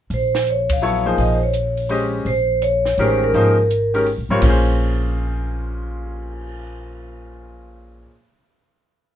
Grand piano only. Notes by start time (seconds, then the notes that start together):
0.82 F#3 B3 E4 A4 C#5
1.05 F3 A#3 D#4 G#4 C5
1.89 G#3 C#4 G4 C5 D#5
2.99 D#3 G#3 C#4 G4 A#4
3.34 F3 A#3 D#4 G#4 C5
3.94 D#3 G#3 C#4 G4 A#4
4.30 G3 C4 F4 A#4 C#5
4.38 A#2 A#3
4.44 C#4 G#4
4.49 C5